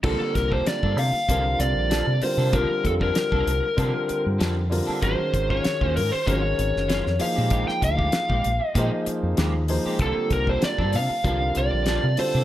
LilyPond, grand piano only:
\new Staff \with { instrumentName = "Grand piano" } { \time 4/4 \key bes \major \tempo 4 = 96 <d g bes c' f'>2 <d g c' f' bes'>4. <d g c' f' bes'>8 | <d g c' f' bes'>2 <d g c' f' bes'>4. <d g c' f' bes'>8 | <ees aes des' ges' bes'>2 <ees aes des' ges' bes'>4. <f bes ees' aes' c''>8~ | <f bes ees' aes' c''>4. r8 <f bes ees' aes' c''>4. <f bes ees' aes' c''>8 |
<d g bes c' f'>2 <d g c' f' bes'>4. <d g c' f' a'>8 | }